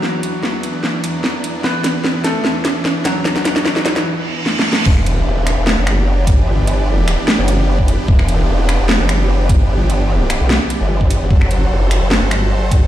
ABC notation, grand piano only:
X:1
M:4/4
L:1/16
Q:1/4=149
K:Em
V:1 name="Grand piano"
[F,F]16 | [B,B]6 [A,A]3 z4 z [F,F]2- | [F,F]8 z8 | z16 |
z16 | z16 | z16 | z16 |]